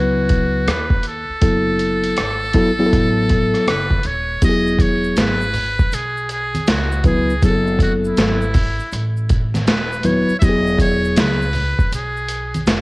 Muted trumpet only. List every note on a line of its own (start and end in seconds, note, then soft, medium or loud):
0.00 0.72 F#4 medium
0.70 1.06 B4 medium
1.07 3.64 A4 medium
3.69 4.08 B4 medium
4.06 4.43 C#5 medium
4.44 4.83 D#5 loud
4.81 5.18 C#5 loud
5.20 5.96 B4 loud
5.94 6.31 G#4 medium
6.32 6.70 G#4 medium
6.69 7.05 F#4 medium
7.06 7.40 G#4 medium
7.44 7.78 A4 loud
7.82 7.93 F#4 medium
8.07 9.21 E4 medium
9.68 10.07 B4 medium
10.06 10.38 C#5 medium
10.39 10.46 E5 medium
10.44 10.81 D#5 loud
10.81 11.21 C#5 loud
11.20 11.93 B4 loud
11.95 12.64 G#4 medium